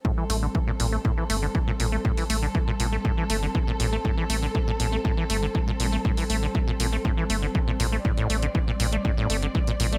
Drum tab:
HH |--o---o---o---o-|-oo---o---o---o-|--o---o---o---o-|-oo---o---o---o-|
BD |o---o---o---o---|o---o---o---o---|o---o---o---o---|o---o---o---o---|

HH |-xox--ox--ox-xox|
BD |o---o---o---o---|